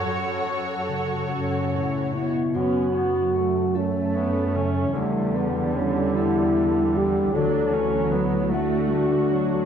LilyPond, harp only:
\new Staff \with { instrumentName = "Harp" } { \time 6/8 \key fis \phrygian \tempo 4. = 50 <fis, cis' fis'>8 cis'8 cis8 fis'8 cis'8 fis'8 | fis,8 cis'8 fis'8 a'8 cis'8 cis8 | e,8 a4 a'8 a8 e8 | d8 a8 e'8 fis''8 a8 d'8 | }